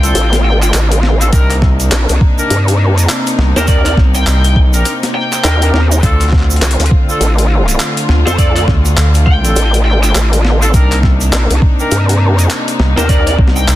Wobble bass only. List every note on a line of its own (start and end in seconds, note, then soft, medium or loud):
0.15 0.55 A1 loud
0.55 0.72 G#1 loud
0.74 1.31 A1 medium
1.92 2.07 A#1 loud
2.10 2.19 C2 medium
2.51 2.91 G2 loud
2.91 3.07 F#2 loud
3.56 3.95 D#2 medium
5.44 5.72 D#2 medium
5.74 6.01 D#2 loud
6.62 6.77 C2 loud
6.80 6.90 D2 loud
7.21 7.78 A1 loud
8.27 8.66 F2 loud
9.56 9.96 A1 loud
9.96 10.13 G#1 loud
10.15 10.72 A1 medium
11.33 11.48 A#1 loud
11.50 11.60 C2 loud
11.92 12.32 G2 loud
12.32 12.49 F#2 loud
12.97 13.37 D#2 loud